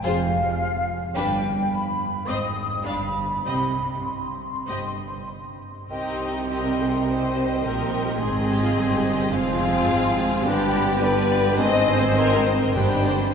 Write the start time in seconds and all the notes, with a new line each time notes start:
0.02 F1 F2 F4 G#4 C5 F5
1.15 G1 G2 D4 G4 B4 G5
1.72 B5
2.27 G#1 G#2 C4 C5 D#5 D#6
2.84 G1 G2 D4 G4 F5 B5
3.45 C2 C3 C4 G4 D#5 B5
4.06 C6
4.68 G1 G2 C4 G4 D#5
5.90 C2 C3 D#3 G3 C4 D#4 G4 D#5 G5 C6
6.48 D#3 C4 G4 D#5 G5 C6
6.65 A#4
6.80 G#4
6.95 A#4
7.07 D#3 C4 G4 C5 D#5 G5 C6
7.64 A#1 A#2 A#4
8.19 G#1 G#2 D#3 G#3 C4 G#4 D#5 G#5 C6
8.50 G4
8.63 F4
8.77 G1 G2 G4
9.33 F1 F2 F3 C4 F4 G#4 F5 G#5 C6
9.89 G#1 G#2
10.44 G1 G2 D3 G3 B3 D4 G4 D5 G5 B5
11.00 D3 G3 B3 D4 G4 B4 D5 G5 B5
11.58 G#1 G#2 D#3 G#3 C4 C5 D#5 G#5 C6
12.02 C5
12.17 A#4
12.46 C5
12.61 A#4
12.74 G1 G2 D3 G3 D4 G4 C5 G5 B5